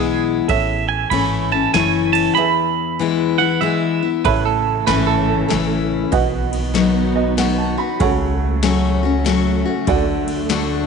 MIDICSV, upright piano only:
0, 0, Header, 1, 2, 480
1, 0, Start_track
1, 0, Key_signature, 3, "major"
1, 0, Tempo, 625652
1, 379, Time_signature, 3, 2, 24, 8
1, 8336, End_track
2, 0, Start_track
2, 0, Title_t, "Upright piano"
2, 0, Program_c, 0, 0
2, 0, Note_on_c, 0, 68, 50
2, 0, Note_on_c, 0, 71, 44
2, 0, Note_on_c, 0, 76, 52
2, 366, Note_on_c, 0, 69, 72
2, 373, Note_off_c, 0, 76, 0
2, 374, Note_off_c, 0, 71, 0
2, 375, Note_off_c, 0, 68, 0
2, 376, Note_on_c, 0, 73, 61
2, 385, Note_on_c, 0, 76, 72
2, 1784, Note_off_c, 0, 69, 0
2, 1789, Note_off_c, 0, 73, 0
2, 1793, Note_off_c, 0, 76, 0
2, 1804, Note_on_c, 0, 68, 66
2, 1819, Note_on_c, 0, 71, 59
2, 1827, Note_on_c, 0, 76, 72
2, 3222, Note_off_c, 0, 68, 0
2, 3230, Note_off_c, 0, 71, 0
2, 3234, Note_off_c, 0, 76, 0
2, 3254, Note_on_c, 0, 64, 86
2, 3263, Note_on_c, 0, 69, 79
2, 3267, Note_on_c, 0, 73, 71
2, 3271, Note_on_c, 0, 76, 84
2, 4666, Note_off_c, 0, 64, 0
2, 4671, Note_off_c, 0, 69, 0
2, 4673, Note_off_c, 0, 73, 0
2, 4675, Note_off_c, 0, 76, 0
2, 4688, Note_on_c, 0, 66, 80
2, 4691, Note_on_c, 0, 71, 77
2, 4697, Note_on_c, 0, 75, 74
2, 4701, Note_on_c, 0, 78, 90
2, 5479, Note_off_c, 0, 75, 0
2, 5491, Note_on_c, 0, 75, 76
2, 5647, Note_off_c, 0, 75, 0
2, 5647, Note_off_c, 0, 78, 0
2, 5659, Note_on_c, 0, 78, 70
2, 5802, Note_off_c, 0, 78, 0
2, 5818, Note_on_c, 0, 81, 72
2, 5959, Note_off_c, 0, 81, 0
2, 5971, Note_on_c, 0, 83, 66
2, 6103, Note_off_c, 0, 66, 0
2, 6104, Note_off_c, 0, 71, 0
2, 6127, Note_off_c, 0, 83, 0
2, 6133, Note_on_c, 0, 66, 83
2, 6136, Note_on_c, 0, 69, 76
2, 6143, Note_on_c, 0, 73, 72
2, 6148, Note_on_c, 0, 78, 93
2, 7546, Note_off_c, 0, 66, 0
2, 7547, Note_off_c, 0, 69, 0
2, 7550, Note_off_c, 0, 73, 0
2, 7553, Note_off_c, 0, 78, 0
2, 7571, Note_on_c, 0, 66, 85
2, 7579, Note_on_c, 0, 69, 74
2, 7582, Note_on_c, 0, 74, 80
2, 7589, Note_on_c, 0, 78, 92
2, 8336, Note_off_c, 0, 66, 0
2, 8336, Note_off_c, 0, 69, 0
2, 8336, Note_off_c, 0, 74, 0
2, 8336, Note_off_c, 0, 78, 0
2, 8336, End_track
0, 0, End_of_file